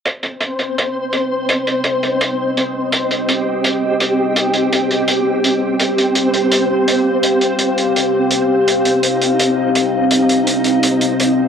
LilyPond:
<<
  \new Staff \with { instrumentName = "Ambient pad" } { \time 4/4 \key c \minor \tempo 4 = 167 << { ees''1~ | ees''1~ | ees''1~ | ees''1 |
f''1~ | f''1~ | f''1~ | f''1 | } \\ { <c' g'>1~ | <c' g'>1~ | <c' g'>1~ | <c' g'>1~ |
<c' g'>1~ | <c' g'>1~ | <c' g'>1~ | <c' g'>1 | } >> }
  \new Staff \with { instrumentName = "Synth texture" } { \time 4/4 \key c \minor <c' c''>1~ | <c' c''>1 | g'1~ | g'1 |
c''1~ | c''1 | ees'1~ | ees'1 | }
  \new DrumStaff \with { instrumentName = "Drums" } \drummode { \time 4/4 hh8 hh8 hh8 hh8 hh4 hh4 | hh8 hh8 hh8 hh8 hh4 hh4 | hh8 hh8 hh4 hh4 hh4 | hh8 hh8 hh8 hh8 hh4 hh4 |
hh8 hh8 hh8 hh8 hh4 hh4 | hh8 hh8 hh8 hh8 hh4 hh4 | hh8 hh8 hh8 hh8 hh4 hh4 | hh8 hh8 hh8 hh8 hh8 hh8 hh4 | }
>>